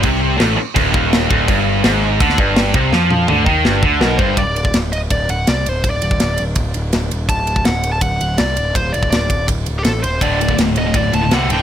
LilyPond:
<<
  \new Staff \with { instrumentName = "Lead electric guitar" } { \time 4/4 \tempo 4 = 165 r1 | r1 | r2. bes'8 c''8 | d''4 r8 ees''8 d''8 fis''8 d''8 c''8 |
d''4. r2 r8 | a''4 fis''8. a''16 fis''4 d''4 | c''8 d''8 d''4 r8. r32 g'32 a'8 c''8 | d''4 r8 ees''8 d''8 a''8 fis''8 g''8 | }
  \new Staff \with { instrumentName = "Distorted electric guitar" } { \clef bass \time 4/4 c4 a,8 r8 d,8 ees,4 d,8 | g,4 gis,4 d8 g,4 c8 | f4 d8 ees8 g,8 d8 b,8 g,8 | r1 |
r1 | r1 | r1 | <d, a, d>8 <d, a,>16 <d, a,>16 <d, a,>8 <d, a,>16 <d, a,>16 <d, a,>8 <d, a,>16 <d, a,>16 <d, a, d>8 <d, a, d>16 r16 | }
  \new Staff \with { instrumentName = "Picked electric bass" } { \clef bass \time 4/4 c,4 a,,8 r8 d,,8 ees,,4 d,,8 | g,,4 gis,,4 d,8 g,,4 c,8 | f,4 d,8 ees,8 g,,8 d,8 b,,8 g,,8 | d,,4 d,,4 d,,8 d,,8 c,8 d,,8 |
d,,8 d,,8 d,,8 d,,8 d,,8 d,,8 d,,8 ees,,8 | d,,4 d,,4 d,,8 d,,8 c,8 d,,8 | d,,8 d,,8 d,,8 d,,8 d,,8 d,,8 a,,8 ees,,8 | d,,4 d,,4 d,,8 d,,8 c,8 d,,8 | }
  \new DrumStaff \with { instrumentName = "Drums" } \drummode { \time 4/4 <cymc bd>4 <cymc sn>4 <cymc bd>8 bd8 <cymc sn>8 bd8 | <cymc bd>4 <cymc sn>4 <cymc bd>16 sn16 bd8 <cymc sn>8 bd8 | sn8 tommh8 toml8 bd8 sn8 bd8 sn8 bd8 | <bd cymr>8 cymr16 bd16 <cymr sn>8 cymr8 <bd cymr>8 cymr8 <cymr sn>8 cymr8 |
<bd cymr>8 cymr16 bd16 <cymr sn>8 cymr8 <bd cymr>8 cymr8 <cymr sn>8 cymr8 | <bd cymr>8 cymr16 bd16 <cymr sn>8 cymr8 <bd cymr>8 cymr8 <cymr sn>8 cymr8 | <bd cymr>8 cymr16 bd16 <cymr sn>8 <bd cymr>8 <bd cymr>8 cymr8 <cymr sn>8 cymr8 | <bd cymr>8 cymr16 bd16 <cymr sn>8 cymr8 <bd cymr>8 cymr8 <cymr sn>8 cymr8 | }
>>